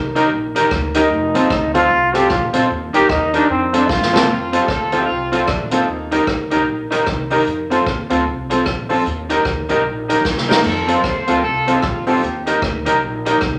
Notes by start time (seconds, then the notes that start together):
Already playing: C2
0.15 D#4 G4 A#4, closed hi-hat
0.31 A#1
0.55 D#4 G4 A#4, closed hi-hat
0.71 D2, kick, cross-stick
0.94 D#4 G4 A#4, closed hi-hat
1.10 F1
1.34 D#2 C4 F4 A4, closed hi-hat
1.50 D2, kick, cross-stick
1.74 C4 F4 A4, closed hi-hat
1.90 C2
2.13 C4 F4 G4 A4, closed hi-hat
2.30 A#1 F4, kick, cross-stick
2.53 A#1 C4 F4 A4, closed hi-hat
2.70 D#2
2.93 D2 D#4 G4 A#4, closed hi-hat
3.09 D#2 D#4, kick, cross-stick
3.34 D4 D#4 G4 A#4, closed hi-hat
3.49 F2 C4
3.73 C4 F4 A4, closed hi-hat
3.77 D4
3.89 G2 F4, kick, snare
4.02 snare
4.13 C2 C4 F4 A4, snare
4.29 F2 C4 F4
4.52 C4 F4 A4, closed hi-hat
4.60 D#4 G4
4.67 D2 F4 A4, kick, cross-stick
4.92 C4 F4 A4, closed hi-hat
4.98 D#4 G4
5.05 C2 C4 F4
5.32 C4 F4 A4, closed hi-hat
5.38 A3 C4
5.46 A#1 A3 D4, kick, cross-stick
5.71 A#3 C4 D#4 F4 A4, closed hi-hat
5.88 D#2
6.11 D#4 G4 A#4, closed hi-hat
6.27 D2, kick, cross-stick
6.50 C2 D#4 G4 A#4, closed hi-hat
6.68 A#1
6.91 D#4 G4 A#4, closed hi-hat
7.06 C2, kick, cross-stick
7.30 D#4 G4 A#4, open hi-hat
7.47 F2, hi-hat pedal
7.70 C4 F4 A4, closed hi-hat
7.86 D#2, kick, cross-stick
8.10 D2 C4 F4 A4, closed hi-hat
8.26 C2
8.50 C4 F4 A4, closed hi-hat
8.66 A#1, kick, cross-stick
8.89 C4 F4 A4, open hi-hat
9.06 D#2, hi-hat pedal
9.30 D#4 G4 A#4, closed hi-hat
9.45 D2, kick, cross-stick
9.69 C2 D#4 G4 A#4, closed hi-hat
9.86 A#1
10.08 D#4 G4 A#4, closed hi-hat
10.25 C2, kick, snare
10.37 snare
10.48 D#4 G4 A#4, snare
10.64 F2 F4 A4, crash
10.87 C4 F4 A4, closed hi-hat
10.98 G4 A#4
11.04 D#2 A4 C5, kick, cross-stick
11.27 D2 C4 F4 A4, closed hi-hat
11.37 G4 A#4
11.44 C2 F4 A4
11.67 C4 F4 A4, closed hi-hat
11.75 C4 D#4
11.82 A#1 C4 F4, kick, cross-stick
12.07 C4 D#4 F4 G4 A4, open hi-hat
12.23 D#2, hi-hat pedal
12.46 D#4 G4 A#4, closed hi-hat
12.62 D2, kick, cross-stick
12.85 C2 D#4 G4 A#4, closed hi-hat
13.01 A#1
13.25 D#4 G4 A#4, closed hi-hat
13.41 C2, kick, cross-stick